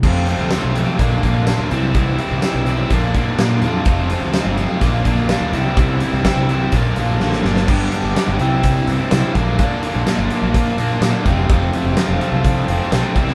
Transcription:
<<
  \new Staff \with { instrumentName = "Distorted electric guitar" } { \time 4/4 \key f \lydian \tempo 4 = 126 <f, c f a c' f'>8 <f, c f a c' f'>8 <f, c f a c' f'>8 <f, c f a c' f'>8 <bes, d bes d' f'>8 <bes, d bes d' f'>8 <bes, d bes d' f'>8 <c e g c' e'>8 | <c e g c' e'>8 <c e g c' e'>8 <c e g c' e'>8 <c e g c' e'>8 <bes, d bes d' f'>8 <bes, d bes d' f'>8 <bes, d bes d' f'>8 <bes, d bes d' f'>8 | <f, c f a c' f'>8 <f, c f a c' f'>8 <f, c f a c' f'>8 <f, c f a c' f'>8 <bes, d bes d' f'>8 <bes, d bes d' f'>8 <bes, d bes d' f'>8 <c e g c' e'>8 | <c e g c' e'>8 <c e g c' e'>8 <c e g c' e'>8 <c e g c' e'>8 <bes, d bes d' f'>8 <bes, d bes d' f'>8 <bes, d bes d' f'>8 <bes, d bes d' f'>8 |
<g, d g b d' g'>8 <g b d' g'>8 <g, d g b d' g'>8 <c e g c' e'>4 <g c' e'>8 <e g c' e'>8 <bes, d bes d' f'>8 | <bes, d bes d' f'>8 <bes d' f'>8 <bes, d bes d' f'>8 <bes d' f'>4 <bes d' f'>8 <d bes d' f'>8 <f, c f a c' f'>8 | <f, c f a c' f'>8 <f a c' f'>8 <f, c f a c' f'>8 <f a c' f'>4 <f a c' f'>8 <f a c' f'>8 <c e g c' e'>8 | }
  \new Staff \with { instrumentName = "Picked electric bass" } { \clef bass \time 4/4 \key f \lydian f,8. d,8 b,,8 r16 bes,,8 bes,,8. d,16 c,8~ | c,8. c,16 r16 b,,8. bes,,8 r8 bes,8 f,8 | f,,8. d,8 g,,8 r16 bes,,8 bes,,8. d,16 c,8~ | c,8. c,16 r16 c,8. bes,,8 bes,,8 a,,8 g,,8 |
g,,8 r16 g,,16 r16 g,,16 c,4 c,16 r16 c,16 r16 bes,,8 | bes,8 r16 bes,,16 r16 g,,16 r16 bes,,8 r16 bes,16 r16 bes,16 r16 f,,8 | f,,8 r16 f,,16 r16 f,,16 r16 c,8. f,,16 r16 b,,16 r16 c,8 | }
  \new DrumStaff \with { instrumentName = "Drums" } \drummode { \time 4/4 <cymc bd>8 hh16 sn16 <hh sn tamb>8 hh8 <hh bd>8 <hh bd>8 <hh sn tamb>8 hh8 | <hh bd>8 hh8 <hh sn tamb>8 hh8 <hh bd>8 <hh bd>8 <hh sn tamb>8 hh8 | <hh bd>8 hh8 <hh sn tamb>8 hh8 <hh bd>8 <hh bd>8 <hh sn tamb>8 hh8 | <hh bd>8 hh8 <hh bd sn tamb>8 hh8 <hh bd>8 hh8 sn16 sn16 sn16 sn16 |
<cymc bd>8 hh8 <hh sn tamb>8 hh8 <hh bd>8 hh8 <hh sn tamb>8 <hh bd sn>8 | <hh bd>8 hh8 <hh sn tamb>8 hh8 <hh bd>8 hh8 <hh sn tamb>8 <hh bd>8 | <hh bd>8 hh8 <hh sn tamb>8 hh8 <hh bd>8 hh8 <hh sn tamb>8 <hh bd>16 sn16 | }
>>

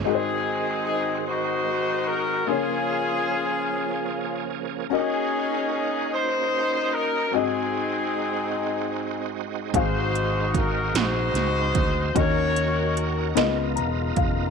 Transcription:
<<
  \new Staff \with { instrumentName = "Horn section" } { \time 6/8 \key aes \mixolydian \tempo 4. = 50 << { aes'4 aes'8 c''4 bes'8 | aes'2~ aes'8 r8 | aes'4 aes'8 c''4 bes'8 | aes'2~ aes'8 r8 |
c''4 bes'8 c''4. | des''4 r2 | } \\ { <c' ees'>4. <ees' ges'>4. | f'2~ f'8 r8 | <des' ees'>4. ees'4. | <c' ees'>2~ <c' ees'>8 r8 |
<ees' ges'>4. <ees' ges'>4. | <ges' bes'>4. r4. | } >> }
  \new Staff \with { instrumentName = "Upright piano" } { \time 6/8 \key aes \mixolydian << { r2. | r2. | r2. | r2. |
r2. | r2 bes''8 f''8 | } \\ { <aes ees' ges' bes' c''>2. | <bes f' aes' des''>2. | <des' ges' bes' ees''>2. | <c' ges' aes' ees''>2. |
<c' ges' aes' f''>2. | <des' ges' bes' ees''>4. <ces' f' bes' ees''>4. | } >> }
  \new Staff \with { instrumentName = "Upright piano" } { \clef bass \time 6/8 \key aes \mixolydian aes,4. r4. | des4. r4. | r2. | aes,4. r4. |
aes,4. r4. | ees4. des4. | }
  \new Staff \with { instrumentName = "Tonewheel organ" } { \time 6/8 \key aes \mixolydian << { ges'2. | aes'2. | ges'2.~ | ges'2. |
f''2. | ges'4. f'4. | } \\ { c'2. | des'2. | des'2. | c'2.~ |
c'2. | des'4. ces'4. | } >> }
  \new Staff \with { instrumentName = "Tonewheel organ" } { \clef bass \time 6/8 \key aes \mixolydian << { aes2. | bes2.~ | bes2. | aes2.~ |
aes2. | bes'2. | } \\ { ees2. | f2. | ees'2.~ | ees'2.~ |
ees'2.~ | ees'2. | } >> }
  \new Staff \with { instrumentName = "Fingered electric bass" } { \clef bass \time 6/8 \key aes \mixolydian r2. | r2. | r2. | r2. |
aes,,4. bes,,8 des,8 d,8 | ees,4. des,8 fes,,8 f,,8 | }
  \new DrumStaff \with { instrumentName = "Drums" } \drummode { \time 6/8 r4. r4. | r4. r4. | r4. r4. | r4. r4. |
<hh bd>8 hh8 <hh bd>8 <hh sn>8 <hh sn>8 <hh bd>8 | <hh bd>8 hh8 hh8 <hh sn>8 hh8 <hh bd>8 | }
>>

